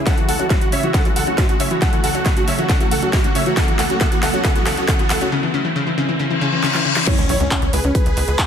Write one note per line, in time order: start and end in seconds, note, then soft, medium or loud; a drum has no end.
0.00 riser medium
0.06 0.12 C#3 loud
0.06 3.53 C#3 medium
0.06 5.28 F#3 medium
0.06 5.28 A3 medium
0.06 3.54 F#4 medium
0.06 0.14 A4 medium
0.06 0.14 F#5 medium
0.06 kick loud
0.06 snare soft
0.06 closed hi-hat medium
0.17 0.21 E3 medium
0.17 0.25 F#4 medium
0.17 closed hi-hat soft
0.28 0.36 C#2 medium
0.28 0.36 A4 medium
0.28 0.36 F#5 medium
0.28 open hi-hat loud
0.39 0.44 C#4 medium
0.39 0.46 F#4 medium
0.39 0.47 F#4 medium
0.39 closed hi-hat medium
0.50 0.53 G#2 medium
0.50 0.57 F#4 medium
0.50 kick loud
0.50 snare medium
0.50 closed hi-hat medium
0.61 0.66 C#3 medium
0.61 0.68 F#4 medium
0.61 closed hi-hat medium
0.72 0.77 C#3 medium
0.72 0.79 C#5 medium
0.72 0.79 E5 medium
0.72 open hi-hat loud
0.83 0.86 E3 medium
0.83 0.90 F#4 medium
0.83 closed hi-hat medium
0.94 0.99 C#3 medium
0.94 1.01 A4 medium
0.94 1.01 F#5 medium
0.94 kick loud
0.94 snare soft
0.94 closed hi-hat medium
1.05 1.08 E3 medium
1.05 1.12 F#4 medium
1.05 closed hi-hat soft
1.16 1.24 C#2 medium
1.16 1.23 A4 medium
1.16 1.23 F#5 medium
1.16 open hi-hat loud
1.27 1.32 C#4 medium
1.27 1.34 F#4 medium
1.27 closed hi-hat soft
1.38 1.41 G#2 medium
1.38 1.45 F#4 medium
1.38 kick loud
1.38 snare medium
1.38 closed hi-hat medium
1.49 1.54 C#3 medium
1.49 1.56 F#4 medium
1.49 closed hi-hat soft
1.60 1.65 C#3 medium
1.60 1.67 C#5 medium
1.60 1.67 E5 medium
1.60 open hi-hat loud
1.71 1.74 E3 medium
1.71 1.78 F#4 medium
1.71 closed hi-hat soft
1.82 1.87 C#3 medium
1.82 1.89 A4 medium
1.82 1.89 F#5 medium
1.82 1.89 F#5 loud
1.82 kick loud
1.82 snare medium
1.82 closed hi-hat medium
1.93 1.96 E3 medium
1.93 2.00 F#4 medium
1.93 closed hi-hat medium
2.04 2.11 C#2 medium
2.04 2.11 A4 medium
2.04 2.11 F#5 medium
2.04 open hi-hat medium
2.15 2.20 C#4 medium
2.15 2.22 F#4 medium
2.15 closed hi-hat medium
2.26 2.29 G#2 medium
2.26 2.33 F#4 medium
2.26 kick loud
2.26 snare medium
2.26 closed hi-hat medium
2.37 2.42 C#3 medium
2.37 2.44 F#4 medium
2.37 closed hi-hat medium
2.48 2.53 C#3 loud
2.48 2.55 C#5 medium
2.48 2.55 E5 medium
2.48 open hi-hat loud
2.58 2.61 E3 medium
2.58 2.66 F#4 medium
2.58 closed hi-hat medium
2.69 2.74 C#3 loud
2.69 2.77 A4 medium
2.69 2.77 F#5 medium
2.69 2.77 F#5 loud
2.69 kick loud
2.69 snare medium
2.69 closed hi-hat medium
2.80 2.83 E3 medium
2.80 2.87 F#4 medium
2.80 2.88 F#4 medium
2.80 closed hi-hat medium
2.91 2.99 C#2 medium
2.91 2.99 A4 medium
2.91 2.98 F#5 medium
2.91 2.99 F#5 medium
2.91 open hi-hat medium
3.02 3.07 C#4 medium
3.02 3.09 F#4 medium
3.02 closed hi-hat soft
3.13 3.16 G#2 medium
3.13 3.20 F#4 medium
3.13 kick loud
3.13 snare medium
3.13 closed hi-hat medium
3.24 3.29 C#3 medium
3.24 3.31 F#4 medium
3.24 closed hi-hat medium
3.35 3.40 C#3 loud
3.35 3.42 C#5 medium
3.35 3.42 E5 medium
3.35 open hi-hat loud
3.46 3.49 E3 medium
3.46 3.53 F#4 medium
3.46 closed hi-hat medium
3.57 5.30 C#3 medium
3.57 3.62 C#3 loud
3.57 5.30 D3 medium
3.57 5.30 E4 medium
3.57 3.64 A4 medium
3.57 3.64 F#5 medium
3.57 3.64 F#5 loud
3.57 kick loud
3.57 snare medium
3.57 closed hi-hat medium
3.68 3.71 E3 medium
3.68 3.75 F#4 medium
3.68 closed hi-hat medium
3.79 3.86 C#2 medium
3.79 3.86 A4 medium
3.79 3.86 F#5 medium
3.79 snare medium
3.79 open hi-hat medium
3.90 3.95 C#4 medium
3.90 3.97 F#4 medium
3.90 closed hi-hat medium
4.01 4.06 C#3 loud
4.01 4.08 A4 medium
4.01 4.08 F#5 medium
4.01 4.08 F#5 loud
4.01 kick loud
4.01 snare medium
4.01 closed hi-hat loud
4.12 4.15 E3 medium
4.12 4.19 F#4 medium
4.12 closed hi-hat medium
4.23 4.30 C#2 medium
4.23 4.30 A4 medium
4.23 4.30 F#5 medium
4.23 snare medium
4.23 open hi-hat loud
4.34 4.39 C#4 medium
4.34 4.41 F#4 medium
4.34 closed hi-hat medium
4.44 4.50 C#3 loud
4.44 4.52 A4 medium
4.44 4.52 F#5 loud
4.44 kick loud
4.44 snare medium
4.44 closed hi-hat medium
4.55 4.59 E3 medium
4.55 4.63 F#4 medium
4.55 closed hi-hat medium
4.66 4.74 C#2 medium
4.66 4.74 A4 medium
4.66 4.73 F#5 medium
4.66 4.74 F#5 medium
4.66 snare medium
4.66 open hi-hat medium
4.77 4.82 C#4 medium
4.77 4.84 F#4 medium
4.77 4.85 F#4 medium
4.77 closed hi-hat medium
4.88 4.93 C#3 loud
4.88 4.95 A4 medium
4.88 4.95 F#5 medium
4.88 4.95 F#5 loud
4.88 kick loud
4.88 snare medium
4.88 closed hi-hat loud
4.99 5.02 E3 medium
4.99 5.06 F#4 medium
4.99 closed hi-hat medium
5.10 5.18 C#2 medium
5.10 5.17 A4 medium
5.10 5.17 F#5 loud
5.10 5.17 F#5 medium
5.10 snare medium
5.10 open hi-hat loud
5.21 5.26 C#4 medium
5.21 5.28 F#4 medium
5.21 closed hi-hat medium
5.32 5.37 C#3 loud
5.43 5.46 E3 medium
5.54 5.59 C#3 loud
5.65 5.68 E3 medium
5.76 5.81 C#3 loud
5.87 5.90 E3 medium
5.98 6.03 C#3 loud
6.09 6.12 E3 medium
6.19 6.25 C#3 loud
6.19 reverse cymbal medium
6.31 6.34 E3 medium
6.41 6.47 C#3 loud
6.52 6.56 E3 medium
6.63 6.69 C#3 loud
6.63 snare medium
6.74 6.78 E3 medium
6.74 snare medium
6.85 6.90 C#3 loud
6.96 6.99 E3 medium
6.96 snare medium
7.07 7.14 E4 medium
7.07 7.14 C#5 medium
7.07 7.14 C#5 loud
7.07 kick loud
7.07 closed hi-hat loud
7.07 crash loud
7.07 impact medium
7.18 7.26 C#2 medium
7.18 7.25 C#4 medium
7.18 closed hi-hat medium
7.29 7.37 B1 loud
7.29 7.36 E4 medium
7.29 7.36 C#5 loud
7.29 7.36 C#5 medium
7.29 open hi-hat loud
7.40 7.48 C#2 medium
7.40 7.47 C#4 medium
7.40 closed hi-hat medium
7.51 7.58 C#4 medium
7.51 kick loud
7.51 clap loud
7.51 closed hi-hat loud
7.62 7.70 C#2 medium
7.62 7.69 C#4 medium
7.62 closed hi-hat medium
7.73 7.81 C#2 loud
7.73 7.80 G#4 medium
7.73 7.80 B4 medium
7.73 open hi-hat loud
7.84 7.92 C#2 medium
7.84 7.91 C#4 medium
7.84 closed hi-hat medium
7.95 8.47 G#4 medium
7.95 8.47 B4 loud
7.95 8.47 B4 medium
7.95 kick loud
7.95 closed hi-hat medium
8.06 8.14 C#2 medium
8.06 closed hi-hat medium
8.17 8.25 C#2 loud
8.17 open hi-hat loud
8.28 8.36 C#2 medium
8.28 closed hi-hat medium
8.39 kick loud
8.39 clap loud
8.39 closed hi-hat loud